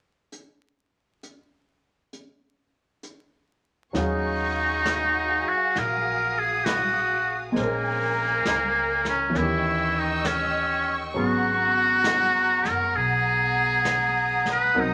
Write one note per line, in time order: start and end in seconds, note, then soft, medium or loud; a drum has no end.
0.32 closed hi-hat soft
1.23 closed hi-hat soft
2.13 closed hi-hat soft
3.03 closed hi-hat soft
3.93 5.44 D#2 medium
3.93 7.55 F#3 soft
3.93 7.56 C#4 soft
3.93 5.50 D#4 medium
3.93 7.52 F#4 soft
3.93 7.52 G#4 medium
3.93 7.51 F5 medium
3.93 5.73 C#6 medium
3.93 brush sweep soft
3.93 snare soft
3.97 7.58 G#4 soft
3.97 7.57 F5 soft
4.85 snare soft
4.85 hi-hat pedal soft
5.49 5.81 F#4 medium
5.76 7.52 A#1 medium
5.76 6.40 A#4 medium
5.76 7.55 D#6 medium
5.76 brush sweep soft
5.76 snare soft
6.39 6.66 G#4 medium
6.65 7.41 F#4 medium
6.65 snare soft
6.65 hi-hat pedal soft
7.52 9.33 G#3 soft
7.52 9.33 A#4 medium
7.52 9.34 C5 soft
7.52 9.33 A#5 medium
7.56 8.42 A#1 medium
7.56 9.03 A#3 medium
7.56 9.32 C#4 soft
7.56 9.33 G#5 medium
7.56 brush sweep soft
7.56 snare soft
7.63 9.38 A#4 soft
8.45 9.30 C#2 medium
8.45 snare soft
8.45 hi-hat pedal soft
9.05 9.39 C#4 medium
9.05 snare soft
9.30 11.11 E3 soft
9.34 11.10 D#2 medium
9.34 11.15 D#3 soft
9.34 11.13 C#4 soft
9.34 10.01 E4 medium
9.34 11.13 D#5 medium
9.34 11.13 G5 medium
9.34 12.91 C#6 medium
9.34 11.13 E6 medium
9.34 brush sweep soft
9.34 snare soft
9.41 11.17 G4 soft
9.99 10.29 D#4 medium
10.25 11.01 C#4 medium
10.25 snare soft
10.25 hi-hat pedal soft
11.13 12.62 G#1 medium
11.13 14.73 F#3 soft
11.13 14.75 B3 soft
11.13 14.75 C#4 soft
11.13 14.76 G#4 soft
11.13 14.94 F#5 medium
11.13 14.94 A#5 medium
11.13 brush sweep soft
11.18 12.71 F#4 medium
12.04 snare soft
12.04 hi-hat pedal medium
12.65 12.92 F#1 medium
12.65 snare soft
12.70 12.98 A#4 medium
12.92 14.71 B1 medium
12.92 14.48 G#4 medium
12.92 14.94 D#6 medium
12.92 brush sweep soft
13.85 snare soft
13.85 hi-hat pedal soft
14.46 snare soft
14.51 14.82 B4 medium
14.74 14.94 C2 medium
14.74 14.94 F#3 soft
14.74 14.94 C4 soft
14.74 14.94 D#4 soft
14.74 14.94 A#4 medium
14.74 14.94 C5 medium
14.74 brush sweep soft
14.81 14.94 D#4 medium